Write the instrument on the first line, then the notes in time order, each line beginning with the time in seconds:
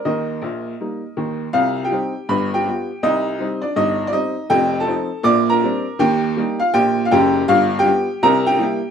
upright piano
0.05 D#2 D#3 A#4 D#5
0.42 A#1 A#2
0.81 G3 A#3 D#4
1.17 D#2 D#3
1.53 C2 C3 F4 F5
1.84 G4 G5
1.91 G3 C4 D#4
2.29 G1 G2 B4 B5
2.54 G4 G5
2.68 G3 B3 F4
3.03 C2 C3 D#4 D#5
3.40 G3 C4 D#4
3.62 D4 D5
3.76 G1 G2 D#4 D#5
4.07 D5
4.13 G3 C4 D#4 D#5
4.50 F1 F2 G4 G5
4.80 A4 A5
4.86 F3 C4 D#4
5.23 A#1 A#2 D5 D6
5.50 A#4 A#5
5.63 G3 C4 D4
5.99 D#2 D#3 G4 G5
6.37 G3 A#3 D#4
6.60 F4 F5
6.74 A#1 A#2 G4 G5
7.05 F5
7.11 F#1 F#2 G4 G5
7.48 G1 G2 F4 F5
7.79 G4 G5
7.85 G3 B3 F4
8.23 C2 C3 A#4 A#5
8.47 G4 G5
8.59 G3 A#3 E4